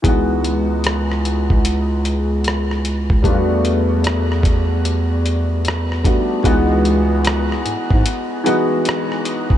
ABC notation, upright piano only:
X:1
M:4/4
L:1/8
Q:"Swing 16ths" 1/4=75
K:C#m
V:1 name="Upright piano"
[E,G,B,DF]8 | [=G,A,B,=D^EF]6- [G,A,B,DEF] [G,A,B,DF] | [E,G,B,DF]4 z [E,G,B,DF]3 |]